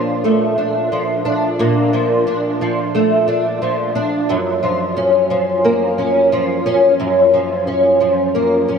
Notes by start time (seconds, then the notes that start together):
Already playing: A#2 F3 A#3 D4
0.24 A3
0.58 D4
0.92 F3
1.25 D4
1.59 A#2
1.93 F3
2.27 D4
2.61 F3
2.95 A3
3.28 D4
3.62 F3
3.95 D4
4.29 F#2
4.63 F3
4.97 C#4
5.30 F3
5.64 A#3
5.98 C#4
6.32 F3
6.66 C#4
7.00 F#2
7.34 F3
7.67 C#4
8.00 F3
8.35 A#3
8.68 C#4